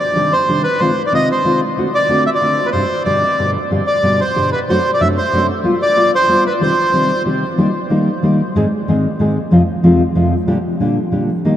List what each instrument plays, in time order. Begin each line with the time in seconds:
0.00 bandoneon D5
0.15 nylon-string guitar C3 D#3 G3 D4 G4
0.33 bandoneon C5
0.48 nylon-string guitar C3 D#3 G3 D4 G4
0.64 bandoneon B4
0.79 nylon-string guitar C3 D#3 G#3 C4 F4, bandoneon C5
1.06 bandoneon D5
1.12 nylon-string guitar C3 D#3 G#3 C4 F4, bandoneon D#5
1.32 bandoneon C5
1.44 nylon-string guitar C3 D#3 G#3 C4 F4
1.77 nylon-string guitar D3 A3 C4 F#4
1.95 bandoneon D5
2.09 nylon-string guitar D3 A3 C4 F#4
2.26 bandoneon E5
2.35 bandoneon D5
2.42 nylon-string guitar D3 A3 C4 F#4
2.66 bandoneon B4
2.72 nylon-string guitar G2 C3 G3 C4 D#4 G4, bandoneon C5
3.05 nylon-string guitar G2 B2 D3 G3 B3 G4, bandoneon D5
3.38 nylon-string guitar G2 B2 D3 G3 B3 G4
3.71 nylon-string guitar G2 B2 D3 G3 B3 G4
3.87 bandoneon D5
4.03 nylon-string guitar G2 B2 D3 G3 B3 G4
4.20 bandoneon C5
4.35 nylon-string guitar G2 B2 D3 G3 B3 G4
4.52 bandoneon B4
4.68 nylon-string guitar F#2 C3 F#3 A3 D4 F#4, bandoneon C5
4.94 bandoneon D5
5.00 nylon-string guitar F#2 C3 F#3 A3 D4 F#4, bandoneon E5
5.18 bandoneon C5
5.33 nylon-string guitar F#2 C3 F#3 A3 D4 F#4
5.63 nylon-string guitar G3 B3 F4
5.82 bandoneon D5
5.96 nylon-string guitar G3 B3 F4
6.15 bandoneon C5
6.28 nylon-string guitar G3 B3 F4
6.47 bandoneon B4
6.60 nylon-string guitar C3 D#3 G3 C4 G4, bandoneon C5
6.93 nylon-string guitar C3 D#3 G3 C4 G4
7.25 nylon-string guitar C3 D#3 G3 C4 G4
7.58 nylon-string guitar D#3 G3 A#3 D#4 G4
7.90 nylon-string guitar D#3 G3 A#3 D#4 G4
8.23 nylon-string guitar D#3 G3 A#3 D#4 G4
8.56 nylon-string guitar G#2 D#3 G#3 C4 D#4 G#4
8.88 nylon-string guitar G#2 D#3 G#3 C4 D#4 G#4
9.19 nylon-string guitar G#2 D#3 G#3 C4 D#4 G#4
9.51 nylon-string guitar F2 C3 F3 G#3 C4 F4
9.83 nylon-string guitar F2 C3 F3 G#3 C4 F4
10.15 nylon-string guitar F2 C3 F3 G#3 C4 F4
10.47 nylon-string guitar A#2 D3 G3 D4 G4
10.80 nylon-string guitar A#2 D3 G3 D4 G4
11.11 nylon-string guitar A#2 D3 G3 D4 G4
11.45 nylon-string guitar D#3 G3 A#3 D#4 G4